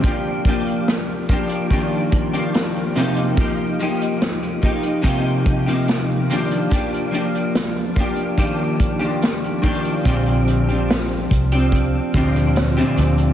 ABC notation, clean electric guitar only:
X:1
M:4/4
L:1/16
Q:1/4=72
K:Bb
V:1 name="Clean electric guitar"
[F,B,DG]2 [F,B,DG]4 [F,B,DG]2 [E,F,B,DG]3 [E,F,B,DG]3 [C,F,B,EG]2 | [F,B,EG]2 [F,B,EG]4 [F,B,EG]2 [C,F,B,EG]3 [C,F,B,EG]3 [E,F,B,DG]2 | [F,B,DG]2 [F,B,DG]4 [F,B,DG]2 [E,F,B,DG]3 [E,F,B,DG]3 [E,F,B,DG]2 | [B,,D,F,CDG]3 [F,CDG]4 [F,CDG]3 [B,,D,F,CDG]3 [B,,D,F,CDG]3 |]